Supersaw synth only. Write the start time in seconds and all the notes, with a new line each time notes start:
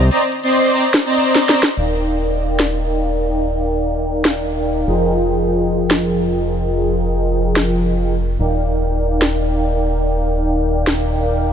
0.11 C4 C5 D5 D#5 A#5
0.44 C4 C5 D5 D#5 C6
0.73 C4 C5 D5 D#5 A#5
1.06 C4 C5 D5 D#5 A#5
1.47 C4 C5 D5 D#5 A#5
1.77 D#4 A#4 D5 F5 G5
4.87 F3 F4 G#4 A#4 D#5 G5
8.39 D#4 A#4 D5 F5 G5